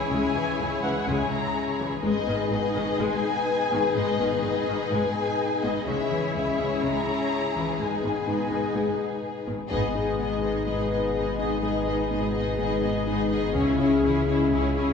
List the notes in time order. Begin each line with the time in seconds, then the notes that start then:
Already playing: G#3 C#4 E4 G#4 C#5 E5
0.11 C#2 C#3 G#3 G#5
0.35 C#2 C#3 E3
0.59 C#2 C#3 G#3
0.82 C#2 C#3 E3 G#3 F#5
1.07 C#2 C#3 G#3 G#5
1.31 A#5
1.79 C#2 C#3 E3
2.02 G#1 G#2 G#3 B3 D#4 G#4 B4 D#5
2.27 G#1 G#2 D#3 B3
2.51 G#1 G#2 D#3 D#4 D#5
2.75 G#1 G#2 D#3 D#4
2.98 G#1 G#2 G#3 G#5
3.71 G#1 G#2 D#3 B3
3.95 G#1 G#2 G#3 D#5
4.19 G#1 G#2 D#3 B3
4.43 G#1 G#2 D#3 D#4 D#5
4.67 G#1 G#2 D#3 D#4
4.91 G#1 G#2 G#3 G#5
5.63 G#1 G#2 D#3 B3 D#5
5.86 C#2 C#3 G#3 C#4 E4 G#4 C#5 E5
6.11 C#2 C#3 E3
6.34 C#2 C#3 G#3 E5
6.59 C#2 C#3 E3 G#3
6.82 C#2 C#3 G#3 A#5
7.55 C#2 C#3 E3
7.79 G#1 G#2 G#3 B3 D#4 G#4 B4 D#5 G#5
8.03 G#1 G#2 D#3 B3
8.27 G#1 G#2 D#3 D#4
8.51 G#1 G#2 D#3 D#4
8.75 G#1 G#2 G#3
9.47 G#1 G#2 D#3 B3
9.70 G#1 G#2 G#3 B3 D#4 G#4 D#5, taiko
9.95 B3 D#4 G#4 D#5
10.18 G#1 G#2 B3 D#4 G#4 D#5
10.43 B3 D#4 G#4 D#5
10.66 G#1 G#2 G#3 B3 D#4 G#4 D#5
10.91 B3 D#4 G#4 D#5
11.14 G#1 G#2 B3 D#4 G#4 D#5
11.38 B3 D#4 G#4 D#5
11.62 G#1 G#2 G#3 B3 D#4 G#4 D#5
11.86 B3 D#4 G#4 D#5
12.10 G#1 G#2 B3 D#4 G#4 D#5
12.35 B3 D#4 G#4 D#5
12.59 G#1 G#2 G#3 B3 D#4 G#4 D#5
12.83 B3 D#4 G#4 D#5
13.06 G#1 G#2 B3 D#4 G#4 D#5
13.31 B3 D#4 G#4 D#5
13.54 C#2 C#3 G#3 C#4 E4 G#4 C#5 E5, taiko
13.79 G#3 C#4 E4 G#4 C#5
14.03 C#2 C#3 E3 C#4 E4 G#4 C#5
14.27 G#3 C#4 E4 G#4 C#5
14.51 C#2 C#3 C#4 E4 G#4 C#5
14.76 C#4 E4 G#4 C#5